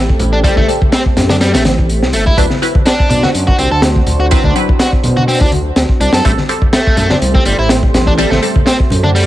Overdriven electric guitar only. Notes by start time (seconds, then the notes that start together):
0.33 D4
0.44 G3
0.57 A3
0.92 C4
1.30 D4
1.41 G3
1.54 A3
2.14 A3
2.26 E4
2.38 D4
2.86 D4
3.10 D4
3.23 F#4
3.47 F#4
3.59 C4
3.72 A4
4.20 F#4
4.31 C4
4.44 D4
4.80 F#4
5.17 F#4
5.28 C4
5.41 D4
6.01 D4
6.14 A4
6.25 A3
6.73 A3
6.97 A3
7.10 D4
7.35 C4
7.46 G3
7.59 E4
8.07 D4
8.18 G3
8.31 A3
8.67 C4
9.04 D4
9.15 G3